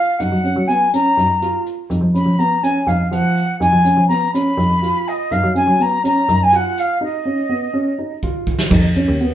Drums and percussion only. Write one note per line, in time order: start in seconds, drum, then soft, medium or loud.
0.20 closed hi-hat medium
0.44 closed hi-hat soft
0.69 closed hi-hat soft
0.94 closed hi-hat medium
1.18 closed hi-hat soft
1.42 closed hi-hat medium
1.66 closed hi-hat soft
1.90 closed hi-hat medium
2.15 closed hi-hat soft
2.40 closed hi-hat soft
2.64 closed hi-hat medium
2.88 closed hi-hat medium
3.12 closed hi-hat medium
3.37 closed hi-hat soft
3.61 closed hi-hat medium
3.85 closed hi-hat medium
4.10 closed hi-hat soft
4.35 closed hi-hat medium
4.59 closed hi-hat soft
4.83 closed hi-hat medium
5.08 closed hi-hat soft
5.32 closed hi-hat medium
5.56 closed hi-hat medium
5.80 closed hi-hat soft
6.05 closed hi-hat medium
6.29 closed hi-hat medium
6.53 closed hi-hat medium
6.77 closed hi-hat medium
8.23 kick soft
8.47 kick medium
8.58 snare medium
8.71 kick medium
8.71 crash medium
8.95 closed hi-hat medium
9.19 closed hi-hat soft